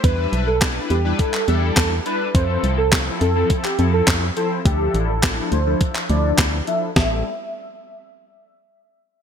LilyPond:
<<
  \new Staff \with { instrumentName = "Digital synth lead" } { \time 4/4 \key a \minor \tempo 4 = 104 b'8 r16 a'16 r8 g'8 a'8 g'16 r16 a'16 r16 b'16 r16 | c''8 r16 a'16 r8 a'8 r16 g'16 r16 a'16 r8 a'16 r16 | g'8 r16 a'16 r8 c''8 r8 d''8 r8 e''16 r16 | e''8 r2. r8 | }
  \new Staff \with { instrumentName = "Analog polysynth" } { \time 4/4 \key a \minor <g d' e' b'>8. r16 <g d' e' b'>8 r16 <g d' e' b'>8 r16 <g d' e' a'>8. r16 <g d' e' b'>8 | <f c' e' a'>8. r16 <f c' e' a'>8 r16 <f c' e' a'>8 r16 <f c' e' a'>8. r16 <f c' e' c''>8 | <f d' e' a'>8. r16 <f d' e' a'>8 r16 <f d' e' a'>8 r16 <f d' e' a'>8. r16 <f d' e' a'>8 | <g c' e' a'>8 r2. r8 | }
  \new Staff \with { instrumentName = "FM bass" } { \clef bass \time 4/4 \key a \minor e,8 b,,4 e,8 r8 e,8 e,8 r8 | f,8 c,4 f,8 r8 f,8 f,8 r8 | d,8 a,,4 d,8 r8 d,8 d,8 r8 | a,,8 r2. r8 | }
  \new DrumStaff \with { instrumentName = "Drums" } \drummode { \time 4/4 <hh bd>8 hh8 <hc hh bd sn>8 hh8 <hh bd>16 hc16 hh8 <hc hh bd sn>8 hh8 | <hh bd>8 hh8 <hc hh bd sn>8 hh8 <hh bd>16 hc16 hh8 <hc hh bd sn>8 hh8 | <hh bd>8 hh8 <hc hh bd sn>8 hh8 <hh bd>16 hc16 hh8 <hc hh bd sn>8 hh8 | <bd sn>4 r4 r4 r4 | }
>>